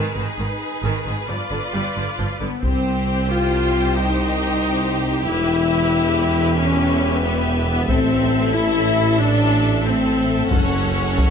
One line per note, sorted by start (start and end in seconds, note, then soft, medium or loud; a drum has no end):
0.00 0.16 D#3 soft
0.00 1.24 D#4 soft
0.00 1.26 G#4 soft
0.00 1.27 B4 soft
0.16 0.24 G#1 soft
0.16 0.25 G#2 soft
0.16 0.25 D#3 soft
0.38 0.46 G#1 soft
0.38 0.47 G#2 soft
0.38 0.47 D#3 soft
0.83 0.91 G#1 soft
0.83 0.92 G#2 soft
0.83 1.05 D#3 soft
1.05 1.14 G#1 soft
1.05 1.14 G#2 soft
1.05 1.14 D#3 soft
1.28 1.36 G1 soft
1.28 1.38 G2 soft
1.28 1.37 F3 soft
1.28 2.39 F4 soft
1.28 2.44 B4 soft
1.28 2.43 D5 soft
1.51 1.59 G1 soft
1.51 1.60 G2 soft
1.51 1.59 D3 soft
1.73 1.82 G1 soft
1.73 1.82 G2 soft
1.73 1.94 G3 soft
1.96 2.04 G1 soft
1.96 2.04 G2 soft
1.96 2.04 D3 soft
2.18 2.27 G1 soft
2.18 2.27 G2 soft
2.18 2.26 F3 soft
2.40 2.49 G1 soft
2.40 2.49 G2 soft
2.40 2.48 D3 soft
2.40 2.62 B3 soft
2.40 2.63 B3 soft
2.63 5.28 C2 soft
2.63 5.23 C2 soft
2.63 3.29 C4 soft
2.63 3.31 C4 medium
2.63 7.85 G4 soft
2.63 5.23 C5 soft
2.63 5.23 G5 soft
2.63 taiko soft
3.30 3.96 F4 medium
3.30 3.95 F4 medium
3.95 5.27 D#4 medium
3.95 5.28 D#4 medium
5.26 7.90 E1 soft
5.26 7.88 E1 soft
5.26 7.89 E2 soft
5.26 6.55 E4 medium
5.26 7.85 B4 soft
5.26 10.52 E5 soft
6.57 7.22 C#4 medium
7.23 7.66 B3 soft
7.23 7.66 B3 medium
7.67 7.88 B3 medium
7.67 7.89 B3 medium
7.88 10.34 A1 medium
7.88 10.52 A1 medium
7.88 10.52 A2 medium
7.88 8.54 C4 medium
7.88 8.53 C4 medium
7.88 11.30 A4 medium
7.88 taiko medium
8.53 9.19 E4 medium
8.53 9.18 E4 medium
9.19 9.85 D4 medium
9.85 10.52 C4 medium
9.85 10.51 C4 medium
10.51 11.30 F#1 soft
10.51 11.30 F#2 soft
10.51 11.30 C#4 soft
10.51 11.30 C#4 medium
10.51 11.30 C#5 soft
10.51 11.30 F#5 soft
10.51 taiko medium
11.18 taiko medium